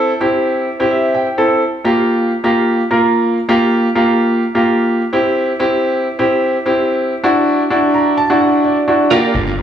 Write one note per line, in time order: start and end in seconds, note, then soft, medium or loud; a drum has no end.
0.00 0.11 C4 medium
0.00 0.11 E4 medium
0.00 0.11 A4 loud
0.20 0.67 C4 medium
0.20 0.67 E4 medium
0.20 0.67 G4 medium
0.80 1.26 C4 medium
0.80 1.26 E4 medium
0.80 1.26 G4 medium
0.91 1.13 E5 medium
1.14 1.58 G5 medium
1.38 1.61 C4 medium
1.38 1.61 E4 medium
1.38 1.61 A4 medium
1.84 2.31 A#3 medium
1.84 2.31 F4 medium
1.84 2.31 G4 medium
2.44 2.80 A#3 medium
2.44 2.80 F4 medium
2.44 2.80 G4 medium
2.91 3.37 A#3 medium
2.91 3.37 F4 medium
2.91 3.37 A#4 medium
3.49 3.86 A#3 medium
3.49 3.86 F4 medium
3.49 3.86 G4 loud
3.95 4.42 A#3 medium
3.95 4.42 F4 medium
3.95 4.42 G4 loud
4.55 5.01 A#3 medium
4.55 5.01 F4 medium
4.55 5.01 G4 medium
5.13 5.51 C4 medium
5.13 5.51 E4 medium
5.13 5.51 G4 medium
5.59 6.06 C4 medium
5.59 6.06 E4 medium
5.59 6.06 G4 loud
6.19 6.55 C4 medium
6.19 6.55 E4 medium
6.19 6.55 G4 medium
6.66 7.12 C4 medium
6.66 7.12 E4 medium
6.66 7.12 G4 medium
7.24 7.61 D4 medium
7.24 7.61 E4 medium
7.24 7.61 F#4 medium
7.70 8.17 D4 medium
7.70 8.17 E4 medium
7.70 8.17 F#4 medium
7.94 8.16 A#5 medium
8.18 8.39 A5 medium
8.30 8.76 D4 medium
8.30 8.76 E4 medium
8.30 8.76 F#4 medium
8.41 8.63 F#5 medium
8.64 8.86 D5 medium
8.88 9.11 D4 medium
8.88 9.11 E4 medium
8.88 9.11 F#4 medium
8.88 9.10 D5 medium
9.11 9.49 A#3 medium
9.11 9.29 F4 medium
9.11 9.49 F4 medium
9.11 9.49 G4 loud
9.11 9.30 A#4 medium
9.11 9.30 D5 medium
9.34 9.62 G1 medium
9.34 9.47 F4 medium
9.34 9.46 A#4 medium
9.34 9.46 D5 medium
9.47 9.57 F4 soft
9.47 9.57 A#4 medium
9.47 9.58 D5 medium
9.58 9.62 A#3 medium
9.58 9.62 F4 medium
9.58 9.62 G4 medium
9.58 muted clean electric guitar stroke soft